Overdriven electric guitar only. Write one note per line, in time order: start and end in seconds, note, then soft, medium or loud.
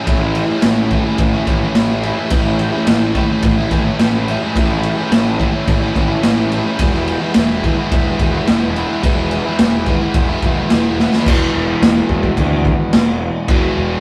0.06 0.62 A2 medium
0.06 0.64 E3 loud
0.06 0.24 A3 loud
0.06 0.23 C#4 loud
0.06 0.21 E4 loud
0.22 0.51 A3 medium
0.22 0.50 C#4 medium
0.22 0.49 E4 medium
0.49 0.65 A3 medium
0.49 0.65 C#4 medium
0.49 0.66 E4 medium
0.63 1.74 A2 loud
0.63 0.90 E3 medium
0.63 0.92 A3 medium
0.63 0.93 C#4 loud
0.63 0.94 E4 loud
0.91 1.45 E3 medium
0.91 1.08 A3 medium
0.91 1.06 C#4 medium
0.91 1.04 E4 medium
1.05 1.35 A3 medium
1.05 1.34 C#4 medium
1.05 1.33 E4 medium
1.33 1.46 A3 medium
1.33 1.48 C#4 medium
1.33 1.48 E4 medium
1.46 1.75 E3 medium
1.46 1.64 A3 medium
1.46 1.63 C#4 medium
1.46 1.61 E4 medium
1.61 1.76 A3 medium
1.61 1.76 C#4 medium
1.61 1.77 E4 medium
1.74 2.30 A2 medium
1.74 2.02 E3 loud
1.74 2.03 A3 medium
1.74 2.05 C#4 loud
1.74 2.05 E4 medium
2.03 2.31 E3 medium
2.03 2.19 A3 medium
2.03 2.18 C#4 medium
2.03 2.16 E4 medium
2.17 2.32 A3 medium
2.17 2.33 C#4 medium
2.17 2.33 E4 medium
2.31 2.87 A2 medium
2.31 2.88 E3 medium
2.31 2.48 A3 loud
2.31 2.46 C#4 medium
2.31 2.45 E4 loud
2.45 2.75 A3 medium
2.45 2.74 C#4 medium
2.45 2.72 E4 medium
2.72 2.88 A3 medium
2.72 2.89 C#4 medium
2.72 2.90 E4 medium
2.87 3.99 A2 loud
2.87 3.15 E3 medium
2.87 3.15 A3 loud
2.87 3.17 C#4 loud
2.87 3.17 E4 medium
3.15 3.69 E3 medium
3.15 3.32 A3 medium
3.15 3.30 C#4 medium
3.15 3.29 E4 medium
3.30 3.59 A3 medium
3.30 3.57 C#4 medium
3.30 3.57 E4 medium
3.58 3.69 A3 medium
3.58 3.70 C#4 medium
3.58 3.73 E4 medium
3.70 3.99 E3 medium
3.70 3.86 A3 medium
3.70 3.85 C#4 medium
3.70 3.84 E4 medium
3.84 3.99 A3 medium
3.84 4.00 C#4 medium
3.84 4.01 E4 medium
3.99 4.55 A2 medium
3.99 4.28 E3 loud
3.99 4.28 A3 loud
3.99 4.28 C#4 loud
3.99 4.30 E4 loud
4.28 4.57 E3 medium
4.28 4.45 A3 medium
4.28 4.43 C#4 medium
4.28 4.42 E4 medium
4.43 4.57 A3 medium
4.43 4.58 C#4 medium
4.43 4.60 E4 medium
4.57 4.98 A2 medium
4.57 5.12 E3 medium
4.57 4.71 A3 loud
4.57 4.70 C#4 medium
4.57 4.69 E4 medium
4.69 4.99 A3 medium
4.69 4.98 C#4 medium
4.69 4.97 E4 medium
4.97 5.12 A3 medium
4.97 5.13 C#4 medium
4.97 5.14 E4 medium
5.12 5.68 A2 medium
5.12 5.39 E3 medium
5.12 5.40 A3 loud
5.12 5.40 C#4 loud
5.12 5.42 E4 medium
5.39 5.94 E3 medium
5.39 5.56 A3 medium
5.39 5.55 C#4 medium
5.39 5.53 E4 medium
5.53 5.82 A3 medium
5.53 5.80 C#4 medium
5.53 5.80 E4 medium
5.80 5.95 A3 medium
5.80 5.95 C#4 medium
5.80 5.97 E4 medium
5.94 6.23 E3 medium
5.94 6.10 A3 medium
5.94 6.08 C#4 medium
5.94 6.07 E4 medium
6.08 6.22 A3 medium
6.08 6.24 C#4 medium
6.08 6.25 E4 medium
6.23 6.78 A2 medium
6.23 6.51 E3 loud
6.23 6.51 A3 loud
6.23 6.52 C#4 medium
6.23 6.54 E4 loud
6.52 6.79 E3 medium
6.52 6.68 A3 medium
6.52 6.66 C#4 medium
6.52 6.66 E4 loud
6.66 6.80 A3 medium
6.66 6.79 C#4 medium
6.66 6.82 E4 medium
6.80 7.34 E3 loud
6.80 6.96 G#3 loud
6.80 6.95 B3 loud
6.80 6.93 E4 loud
6.94 7.24 G#3 medium
6.94 7.23 B3 medium
6.94 7.21 E4 medium
7.21 7.36 G#3 medium
7.21 7.36 B3 medium
7.21 7.38 E4 medium
7.35 7.63 E3 loud
7.35 7.64 G#3 medium
7.35 7.65 B3 loud
7.35 7.66 E4 loud
7.63 8.19 E3 medium
7.63 7.81 G#3 medium
7.63 7.79 B3 medium
7.63 7.78 E4 medium
7.78 8.10 G#3 medium
7.78 8.09 B3 medium
7.78 8.06 E4 medium
8.07 8.22 B3 medium
8.07 8.23 E4 medium
8.11 8.20 G#3 medium
8.20 8.46 E3 medium
8.20 8.35 G#3 medium
8.20 8.32 B3 medium
8.20 8.32 E4 medium
8.32 8.48 G#3 medium
8.32 8.48 B3 medium
8.32 8.49 E4 medium
8.46 8.76 E3 medium
8.46 8.76 G#3 loud
8.46 8.77 B3 loud
8.46 8.78 E4 loud
8.76 9.02 E3 medium
8.76 8.91 G#3 medium
8.76 8.90 B3 medium
8.76 8.88 E4 medium
8.89 9.03 G#3 medium
8.89 9.05 B3 medium
8.89 9.04 E4 medium
9.04 9.46 E3 medium
9.04 9.19 G#3 loud
9.04 9.18 B3 loud
9.04 9.16 E4 loud
9.17 9.47 G#3 medium
9.17 9.46 B3 medium
9.17 9.44 E4 medium
9.45 9.59 G#3 medium
9.45 9.59 B3 medium
9.45 9.60 E4 medium
9.59 9.86 E3 medium
9.59 9.87 G#3 medium
9.59 9.88 B3 loud
9.59 9.89 E4 loud
9.87 10.30 E3 medium
9.87 10.03 G#3 medium
9.87 10.02 B3 medium
9.87 10.00 E4 medium
10.02 10.31 G#3 medium
10.02 10.30 B3 medium
10.02 10.28 E4 medium
10.29 10.44 G#3 medium
10.29 10.45 B3 medium
10.29 10.45 E4 medium
10.44 10.71 E3 medium
10.44 10.61 G#3 medium
10.44 10.60 B3 medium
10.44 10.58 E4 medium
10.59 10.72 G#3 medium
10.59 10.73 B3 medium
10.59 10.74 E4 medium
10.72 10.99 E3 loud
10.72 11.00 G#3 loud
10.72 11.01 B3 loud
10.72 11.02 E4 loud
11.01 11.26 E3 medium
11.01 11.17 G#3 medium
11.01 11.16 B3 medium
11.01 11.14 E4 medium
11.15 11.28 G#3 medium
11.15 11.28 B3 medium
11.15 11.27 E4 medium
11.29 13.48 E2 medium
11.29 13.49 B2 loud
11.29 13.51 E3 loud
13.49 14.00 E2 medium
13.49 14.00 B2 loud
13.49 14.00 E3 loud